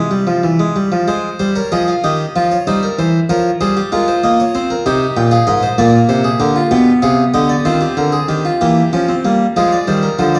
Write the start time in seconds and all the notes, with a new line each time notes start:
Already playing: C3 G#3 C5
0.11 G3
0.27 F3
0.43 E3
0.59 G#3
0.76 G3
0.92 F3
1.08 G#3 C5
1.40 G3 C5
1.56 A#4 C#5
1.72 F3 G#4 D#5
1.88 F5
2.04 D#3 G4 D#5
2.36 F3 F4
2.51 C#5
2.67 G3 D#4 C5
2.83 A#4
2.99 E3 C5
3.30 F3 A#4 C#5
3.61 G3 G#4 C5
3.77 G4
3.92 G#3 F4 A#4
4.08 C5
4.24 A#3 D#5
4.40 C#5
4.55 C4 C5
4.70 A#4
4.86 C3 D#4 G4 C5
5.17 A#2 G5
5.31 G#4 F5
5.47 G#2 A#4 D#5
5.63 C5
5.78 A#2 A#3 A#4 D5
6.09 C3 C5
6.24 G#4
6.40 D3 G4 A#4
6.56 F4
6.71 B2 B3 G4 G5
7.02 C3 G#4 F5
7.34 D3 G4 D#5
7.49 D5
7.65 D#3 C4 F4 C5
7.81 G4
7.97 D3 A#4
8.12 G#4
8.28 D#3 G4
8.45 F4
8.61 E3 A#3 G4 G5
8.93 F3 C#4
9.09 C4
9.25 G3 A#3
9.56 F3 G#3 G#4 F5
9.72 D5
9.87 D#3 G3 C5
10.03 A#4
10.19 D3 F3 C5
10.35 D5